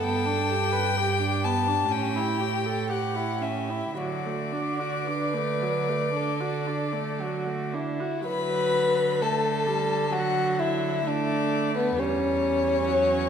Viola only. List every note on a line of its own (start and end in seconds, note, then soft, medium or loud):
0.02 0.27 B3 soft
0.26 0.51 D4 soft
0.49 0.73 G4 soft
0.72 0.98 B4 soft
0.97 1.21 G4 soft
1.20 1.46 D4 soft
1.45 1.69 B3 soft
1.68 1.91 D4 soft
1.91 2.17 C#4 soft
2.16 2.42 E4 soft
2.40 2.67 G4 soft
2.65 2.91 A4 soft
2.89 3.17 G4 soft
3.15 3.43 E4 soft
3.41 3.71 C#4 soft
3.69 3.97 E4 soft
3.98 4.27 F#3 soft
4.26 4.54 A3 soft
4.53 4.81 D4 soft
4.79 5.09 F#4 soft
5.07 5.35 D4 soft
5.34 5.63 A3 soft
5.62 5.90 F#3 soft
5.88 6.14 A3 soft
6.14 6.42 D4 soft
6.41 6.68 F#4 soft
6.67 6.94 D4 soft
6.93 7.20 A3 soft
7.19 7.47 F#3 soft
7.46 7.75 A3 soft
7.73 8.02 D4 soft
8.00 8.25 F#4 soft
8.26 9.23 F#3 medium
9.21 9.68 A3 medium
9.66 10.12 G3 medium
10.13 11.05 F#3 medium
11.07 11.97 A3 medium
11.98 12.89 G3 medium
12.88 13.29 F#3 medium